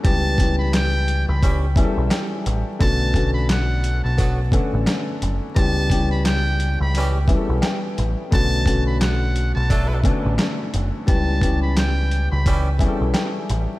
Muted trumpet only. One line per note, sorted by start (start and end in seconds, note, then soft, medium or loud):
0.05 0.56 A5 loud
0.59 0.72 B5 medium
0.75 1.25 G5 loud
1.28 1.59 B5 medium
2.81 3.32 A5 loud
3.34 3.47 B5 medium
3.50 4.01 F#5 loud
4.04 4.35 A5 medium
5.56 6.07 A5 loud
6.11 6.24 B5 medium
6.25 6.76 G5 loud
6.81 7.12 B5 medium
8.34 8.84 A5 loud
8.87 9.00 B5 medium
9.01 9.52 F#5 medium
9.55 9.86 A5 medium
11.08 11.59 A5 loud
11.62 11.75 B5 medium
11.78 12.29 G5 loud
12.32 12.63 B5 medium